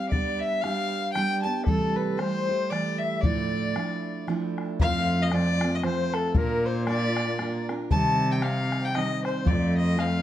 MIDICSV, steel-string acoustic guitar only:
0, 0, Header, 1, 2, 480
1, 0, Start_track
1, 0, Tempo, 519931
1, 104, Time_signature, 3, 2, 24, 8
1, 9436, End_track
2, 0, Start_track
2, 0, Title_t, "Steel-string acoustic guitar"
2, 0, Program_c, 0, 25
2, 0, Note_on_c, 0, 55, 46
2, 0, Note_on_c, 0, 60, 44
2, 0, Note_on_c, 0, 67, 55
2, 94, Note_off_c, 0, 55, 0
2, 105, Note_on_c, 0, 55, 69
2, 107, Note_off_c, 0, 67, 0
2, 111, Note_off_c, 0, 60, 0
2, 114, Note_on_c, 0, 59, 75
2, 115, Note_on_c, 0, 62, 83
2, 122, Note_on_c, 0, 67, 93
2, 580, Note_off_c, 0, 55, 0
2, 581, Note_off_c, 0, 59, 0
2, 584, Note_on_c, 0, 55, 59
2, 585, Note_off_c, 0, 62, 0
2, 592, Note_on_c, 0, 59, 68
2, 596, Note_on_c, 0, 62, 69
2, 600, Note_off_c, 0, 67, 0
2, 604, Note_on_c, 0, 67, 75
2, 1063, Note_off_c, 0, 55, 0
2, 1063, Note_off_c, 0, 59, 0
2, 1066, Note_on_c, 0, 55, 71
2, 1067, Note_off_c, 0, 62, 0
2, 1075, Note_on_c, 0, 59, 65
2, 1078, Note_on_c, 0, 62, 70
2, 1081, Note_off_c, 0, 67, 0
2, 1085, Note_on_c, 0, 67, 75
2, 1318, Note_off_c, 0, 67, 0
2, 1329, Note_on_c, 0, 67, 52
2, 1330, Note_off_c, 0, 62, 0
2, 1339, Note_off_c, 0, 59, 0
2, 1341, Note_on_c, 0, 62, 55
2, 1345, Note_off_c, 0, 55, 0
2, 1350, Note_on_c, 0, 59, 41
2, 1536, Note_on_c, 0, 48, 79
2, 1539, Note_off_c, 0, 59, 0
2, 1540, Note_off_c, 0, 67, 0
2, 1542, Note_on_c, 0, 52, 69
2, 1543, Note_on_c, 0, 55, 79
2, 1545, Note_off_c, 0, 62, 0
2, 1549, Note_on_c, 0, 57, 83
2, 1550, Note_on_c, 0, 67, 89
2, 2002, Note_off_c, 0, 52, 0
2, 2005, Note_on_c, 0, 52, 63
2, 2007, Note_off_c, 0, 55, 0
2, 2018, Note_off_c, 0, 67, 0
2, 2018, Note_on_c, 0, 55, 65
2, 2019, Note_off_c, 0, 57, 0
2, 2022, Note_on_c, 0, 57, 71
2, 2023, Note_off_c, 0, 48, 0
2, 2029, Note_on_c, 0, 67, 76
2, 2289, Note_off_c, 0, 67, 0
2, 2296, Note_off_c, 0, 52, 0
2, 2297, Note_off_c, 0, 57, 0
2, 2300, Note_on_c, 0, 67, 48
2, 2302, Note_off_c, 0, 55, 0
2, 2308, Note_on_c, 0, 57, 54
2, 2319, Note_on_c, 0, 55, 43
2, 2493, Note_off_c, 0, 55, 0
2, 2496, Note_on_c, 0, 52, 68
2, 2497, Note_off_c, 0, 57, 0
2, 2504, Note_on_c, 0, 55, 59
2, 2506, Note_off_c, 0, 67, 0
2, 2508, Note_on_c, 0, 57, 74
2, 2517, Note_on_c, 0, 67, 72
2, 2983, Note_off_c, 0, 52, 0
2, 2985, Note_on_c, 0, 38, 65
2, 2987, Note_off_c, 0, 55, 0
2, 2988, Note_on_c, 0, 45, 75
2, 2988, Note_on_c, 0, 53, 82
2, 2991, Note_off_c, 0, 67, 0
2, 2992, Note_off_c, 0, 57, 0
2, 2995, Note_on_c, 0, 57, 81
2, 2995, Note_on_c, 0, 62, 89
2, 2995, Note_on_c, 0, 64, 70
2, 3455, Note_off_c, 0, 53, 0
2, 3458, Note_on_c, 0, 53, 63
2, 3466, Note_off_c, 0, 62, 0
2, 3468, Note_off_c, 0, 38, 0
2, 3469, Note_off_c, 0, 45, 0
2, 3470, Note_off_c, 0, 57, 0
2, 3473, Note_off_c, 0, 64, 0
2, 3473, Note_on_c, 0, 57, 68
2, 3477, Note_on_c, 0, 62, 70
2, 3483, Note_on_c, 0, 64, 70
2, 3942, Note_off_c, 0, 53, 0
2, 3946, Note_on_c, 0, 53, 67
2, 3950, Note_off_c, 0, 62, 0
2, 3951, Note_off_c, 0, 57, 0
2, 3955, Note_on_c, 0, 57, 66
2, 3957, Note_off_c, 0, 64, 0
2, 3961, Note_on_c, 0, 62, 85
2, 3968, Note_on_c, 0, 64, 75
2, 4423, Note_off_c, 0, 53, 0
2, 4425, Note_off_c, 0, 57, 0
2, 4427, Note_on_c, 0, 53, 91
2, 4430, Note_on_c, 0, 60, 84
2, 4432, Note_off_c, 0, 62, 0
2, 4434, Note_off_c, 0, 64, 0
2, 4436, Note_on_c, 0, 57, 93
2, 4438, Note_on_c, 0, 65, 76
2, 4899, Note_off_c, 0, 53, 0
2, 4901, Note_off_c, 0, 60, 0
2, 4903, Note_off_c, 0, 57, 0
2, 4903, Note_on_c, 0, 53, 70
2, 4912, Note_on_c, 0, 60, 74
2, 4914, Note_on_c, 0, 57, 68
2, 4918, Note_off_c, 0, 65, 0
2, 4921, Note_on_c, 0, 65, 66
2, 5168, Note_off_c, 0, 65, 0
2, 5178, Note_off_c, 0, 57, 0
2, 5180, Note_on_c, 0, 65, 55
2, 5184, Note_off_c, 0, 53, 0
2, 5189, Note_off_c, 0, 60, 0
2, 5189, Note_on_c, 0, 57, 45
2, 5201, Note_on_c, 0, 60, 44
2, 5375, Note_off_c, 0, 60, 0
2, 5378, Note_off_c, 0, 57, 0
2, 5378, Note_on_c, 0, 53, 67
2, 5383, Note_off_c, 0, 65, 0
2, 5386, Note_on_c, 0, 60, 68
2, 5389, Note_on_c, 0, 57, 69
2, 5394, Note_on_c, 0, 65, 67
2, 5853, Note_off_c, 0, 53, 0
2, 5854, Note_off_c, 0, 65, 0
2, 5857, Note_on_c, 0, 58, 88
2, 5858, Note_off_c, 0, 60, 0
2, 5861, Note_off_c, 0, 57, 0
2, 5862, Note_on_c, 0, 62, 79
2, 5865, Note_on_c, 0, 65, 83
2, 5872, Note_on_c, 0, 70, 81
2, 6331, Note_off_c, 0, 58, 0
2, 6340, Note_off_c, 0, 62, 0
2, 6341, Note_off_c, 0, 65, 0
2, 6342, Note_on_c, 0, 58, 66
2, 6349, Note_off_c, 0, 70, 0
2, 6351, Note_on_c, 0, 62, 65
2, 6352, Note_on_c, 0, 65, 71
2, 6360, Note_on_c, 0, 70, 66
2, 6813, Note_off_c, 0, 58, 0
2, 6821, Note_off_c, 0, 62, 0
2, 6824, Note_on_c, 0, 58, 63
2, 6829, Note_off_c, 0, 65, 0
2, 6832, Note_on_c, 0, 62, 67
2, 6833, Note_off_c, 0, 70, 0
2, 6840, Note_on_c, 0, 65, 66
2, 6844, Note_on_c, 0, 70, 77
2, 7091, Note_off_c, 0, 70, 0
2, 7098, Note_off_c, 0, 65, 0
2, 7102, Note_on_c, 0, 70, 65
2, 7103, Note_off_c, 0, 58, 0
2, 7107, Note_off_c, 0, 62, 0
2, 7109, Note_on_c, 0, 65, 55
2, 7116, Note_on_c, 0, 62, 54
2, 7297, Note_on_c, 0, 48, 71
2, 7298, Note_off_c, 0, 62, 0
2, 7301, Note_on_c, 0, 51, 81
2, 7301, Note_on_c, 0, 55, 88
2, 7303, Note_off_c, 0, 65, 0
2, 7305, Note_off_c, 0, 70, 0
2, 7306, Note_on_c, 0, 60, 73
2, 7313, Note_on_c, 0, 63, 83
2, 7764, Note_off_c, 0, 51, 0
2, 7770, Note_off_c, 0, 55, 0
2, 7775, Note_on_c, 0, 51, 66
2, 7780, Note_off_c, 0, 48, 0
2, 7781, Note_on_c, 0, 55, 76
2, 7785, Note_off_c, 0, 63, 0
2, 7786, Note_off_c, 0, 60, 0
2, 7790, Note_on_c, 0, 60, 71
2, 7797, Note_on_c, 0, 63, 81
2, 8243, Note_off_c, 0, 51, 0
2, 8253, Note_off_c, 0, 55, 0
2, 8254, Note_on_c, 0, 51, 61
2, 8264, Note_on_c, 0, 55, 71
2, 8266, Note_off_c, 0, 60, 0
2, 8269, Note_on_c, 0, 60, 76
2, 8270, Note_off_c, 0, 63, 0
2, 8280, Note_on_c, 0, 63, 76
2, 8718, Note_off_c, 0, 51, 0
2, 8721, Note_off_c, 0, 60, 0
2, 8721, Note_on_c, 0, 53, 84
2, 8729, Note_off_c, 0, 55, 0
2, 8732, Note_off_c, 0, 63, 0
2, 8732, Note_on_c, 0, 60, 80
2, 8734, Note_on_c, 0, 57, 86
2, 8736, Note_on_c, 0, 65, 83
2, 9195, Note_off_c, 0, 53, 0
2, 9197, Note_off_c, 0, 60, 0
2, 9199, Note_on_c, 0, 53, 60
2, 9200, Note_off_c, 0, 57, 0
2, 9208, Note_on_c, 0, 60, 68
2, 9211, Note_on_c, 0, 57, 70
2, 9218, Note_off_c, 0, 65, 0
2, 9221, Note_on_c, 0, 65, 72
2, 9436, Note_off_c, 0, 53, 0
2, 9436, Note_off_c, 0, 57, 0
2, 9436, Note_off_c, 0, 60, 0
2, 9436, Note_off_c, 0, 65, 0
2, 9436, End_track
0, 0, End_of_file